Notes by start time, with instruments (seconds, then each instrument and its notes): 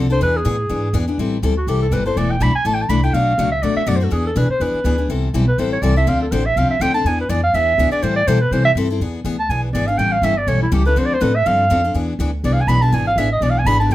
Already playing: upright bass C2
0.10 steel-string acoustic guitar C4 D4 A4, clarinet C5
0.21 upright bass E2, steel-string acoustic guitar E3 B3 D4 G#4, clarinet B4
0.37 clarinet G#4
0.45 upright bass A2, steel-string acoustic guitar E3 B3 D4 G#4
0.69 upright bass G#2, steel-string acoustic guitar E3 B3 D4 G#4
0.93 upright bass E2, steel-string acoustic guitar E3 B3 D4 G#4
1.08 steel-string acoustic guitar B3 D4 G#4
1.18 upright bass A1, steel-string acoustic guitar E3 G3 C4 E4 A4
1.42 upright bass D2, steel-string acoustic guitar E3 G3 C4 E4 A4
1.57 clarinet F#4
1.67 upright bass C2, steel-string acoustic guitar E3 G3 C4 E4 A4, clarinet G4
1.82 clarinet A4
1.91 upright bass G1, steel-string acoustic guitar E3 G3 C4 E4 A4, clarinet B4
2.06 steel-string acoustic guitar C4 E4 A4, clarinet C5
2.16 upright bass E1, steel-string acoustic guitar E3 A3 D4 E4 A4, clarinet D5
2.31 clarinet G5
2.40 upright bass B1, steel-string acoustic guitar E3 A3 D4 E4 A4, clarinet B5
2.54 clarinet G#5, muted upright bass stroke
2.65 upright bass A1, steel-string acoustic guitar E3 A3 D4 E4 A4, clarinet A5
2.74 clarinet G5
2.82 clarinet A5
2.89 upright bass C2, steel-string acoustic guitar E3 A3 D4 E4 A4, clarinet B5
3.03 steel-string acoustic guitar D4 E4 A4, clarinet G5
3.13 upright bass B1, steel-string acoustic guitar B2 F#3 A3 D4 F#4, clarinet F5
3.38 upright bass C#2, steel-string acoustic guitar B2 F#3 A3 D4 F#4
3.52 clarinet E5
3.62 upright bass D2, steel-string acoustic guitar B2 F#3 A3 D4 F#4, clarinet D5
3.76 clarinet E5, muted upright bass stroke
3.87 upright bass F#2, steel-string acoustic guitar B2 F#3 A3 D4 F#4, clarinet D5
3.96 steel-string acoustic guitar F#4, clarinet C5
4.01 steel-string acoustic guitar A3 D4, clarinet A4
4.11 upright bass E2, steel-string acoustic guitar E3 B3 D4 G#4, clarinet G#4
4.27 clarinet A4
4.36 upright bass B2, steel-string acoustic guitar E3 B3 D4 G#4, clarinet B4
4.49 clarinet C5, muted upright bass stroke
4.60 upright bass E2, steel-string acoustic guitar E3 B3 D4 G#4, clarinet B4
4.74 muted upright bass stroke
4.84 upright bass D2, steel-string acoustic guitar E3 B3 D4 G#4
4.98 steel-string acoustic guitar B3 D4 G#4
5.09 upright bass C2, steel-string acoustic guitar E3 G3 C4 E4 A4
5.34 upright bass B1, steel-string acoustic guitar E3 G3 C4 E4 A4
5.48 clarinet B4
5.58 upright bass A1, steel-string acoustic guitar E3 G3 C4 E4 A4, clarinet C5
5.73 clarinet C#5
5.82 upright bass C2, steel-string acoustic guitar E3 G3 C4 E4 A4, clarinet D5
5.96 steel-string acoustic guitar C4 E4 A4, clarinet E5
6.07 upright bass D2, steel-string acoustic guitar D3 F3 C4 D4 A4, clarinet F5
6.22 clarinet A4
6.32 upright bass A1, steel-string acoustic guitar D3 F3 C4 D4 A4, clarinet C5
6.46 clarinet E5
6.56 upright bass C2, steel-string acoustic guitar D3 F3 C4 D4 A4, clarinet F5
6.69 clarinet E5, muted upright bass stroke
6.80 upright bass D2, steel-string acoustic guitar D3 F3 C4 D4 A4, clarinet G5
6.94 steel-string acoustic guitar C4 D4 A4, clarinet A5
7.04 upright bass E2, steel-string acoustic guitar E3 B3 D4 G#4, clarinet G#5
7.21 clarinet B4
7.29 upright bass F2, steel-string acoustic guitar E3 B3 D4 G#4, clarinet D5
7.43 clarinet F5
7.53 upright bass E2, steel-string acoustic guitar E3 B3 D4 G#4, clarinet E5
7.78 upright bass D2, steel-string acoustic guitar E3 B3 D4 G#4
7.92 steel-string acoustic guitar B3 D4 G#4, clarinet D5, muted upright bass stroke
8.02 upright bass A2, steel-string acoustic guitar E3 G3 C4 E4 A4, clarinet C5
8.16 clarinet D5
8.27 upright bass B2, steel-string acoustic guitar E3 G3 C4 E4 A4, clarinet C5
8.41 clarinet B4
8.51 upright bass C3, steel-string acoustic guitar E3 G3 C4 E4 A4, clarinet C5
8.65 clarinet E5
8.75 upright bass G2, steel-string acoustic guitar E3 G3 C4 E4 A4
8.90 steel-string acoustic guitar C4 E4 A4
9.00 upright bass E2, steel-string acoustic guitar E3 B3 D4 G#4
9.24 upright bass D2, steel-string acoustic guitar E3 B3 D4 G#4
9.39 clarinet A5
9.49 upright bass B1, steel-string acoustic guitar E3 B3 D4 G#4, clarinet G#5
9.63 clarinet B4
9.73 upright bass G#1, steel-string acoustic guitar E3 B3 D4 G#4, clarinet D5
9.87 steel-string acoustic guitar B3 D4 G#4, clarinet F5
9.98 upright bass A1, steel-string acoustic guitar E3 G3 C#4 E4 A4, clarinet G5
10.12 clarinet F5
10.22 upright bass G1, steel-string acoustic guitar E3 G3 C#4 E4 A4, clarinet E5
10.38 clarinet D5
10.47 upright bass B1, steel-string acoustic guitar E3 G3 C#4 E4 A4, clarinet C#5
10.63 clarinet E4
10.72 upright bass C#2, steel-string acoustic guitar E3 G3 C#4 E4 A4, clarinet G4
10.85 steel-string acoustic guitar C#4 E4 A4, clarinet B4
10.96 upright bass D2, steel-string acoustic guitar D3 F3 C4 D4 A4, clarinet C5
11.06 clarinet D5
11.14 clarinet C5
11.21 upright bass A2, steel-string acoustic guitar D3 F3 C4 D4 A4, clarinet B4
11.36 clarinet E5
11.46 upright bass G2, steel-string acoustic guitar D3 F3 C4 D4 A4, clarinet F5
11.70 upright bass F2, steel-string acoustic guitar D3 F3 C4 D4 A4
11.84 steel-string acoustic guitar C4 D4 A4
11.94 upright bass E2, steel-string acoustic guitar E3 B3 D4 G#4
12.19 upright bass D2, steel-string acoustic guitar E3 B3 D4 G#4
12.44 upright bass C2, steel-string acoustic guitar E3 B3 D4 G#4, clarinet D5
12.53 clarinet F5
12.61 clarinet G#5
12.67 upright bass B1, steel-string acoustic guitar E3 B3 D4 G#4, clarinet B5
12.82 steel-string acoustic guitar B3 D4 G#4, clarinet A5
12.92 upright bass G#1, steel-string acoustic guitar E3 B3 D4 G#4, clarinet G#5
13.07 clarinet F5
13.16 upright bass A1, steel-string acoustic guitar E3 B3 D4 G#4, clarinet E5
13.32 clarinet D#5
13.41 upright bass B1, steel-string acoustic guitar E3 B3 D4 G#4, clarinet D5
13.50 clarinet F5
13.59 clarinet G#5
13.65 upright bass G#1, steel-string acoustic guitar E3 B3 D4 G#4, clarinet B5
13.80 steel-string acoustic guitar B3 D4 G#4, clarinet A5
13.89 upright bass C2, steel-string acoustic guitar C3 E3 G3 C4 E4 A4